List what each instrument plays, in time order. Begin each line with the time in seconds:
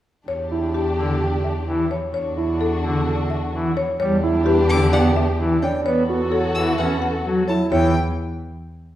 0.27 double bass E2, string section D4 G4, marimba C#5
0.51 grand piano E4
0.74 marimba G4
0.97 pipe organ D3
1.21 grand piano G4
1.44 marimba E5
1.67 pipe organ E3
1.91 marimba C#5
2.14 double bass E2, string section D4 F#4, marimba C#5
2.37 grand piano E4
2.61 marimba A4
2.83 pipe organ D3
3.07 grand piano A4
3.30 marimba E5
3.53 pipe organ E3
3.77 marimba C#5
3.99 double bass E2, pipe organ G3, string section D4 G4, marimba C#5
4.23 grand piano E4
4.46 marimba G4, grand piano B4
4.69 pipe organ D3, violin D6
4.92 pipe organ B3, grand piano G4, marimba D5, violin F#5
5.16 marimba E5
5.38 pipe organ E3
5.62 grand piano D4, marimba C#5, violin G5
5.85 double bass E2, pipe organ B3, string section F#4 A4, marimba C#5
6.09 grand piano F#4
6.32 marimba A4, grand piano C#5
6.55 pipe organ E3, violin E6
6.78 pipe organ C#4, grand piano B4, marimba E5, violin F#5
7.02 marimba F#5
7.25 pipe organ F#3
7.48 grand piano E4, marimba C#5, violin A5
7.71 double bass E2, pipe organ E3, grand piano E4, marimba C#5, violin G5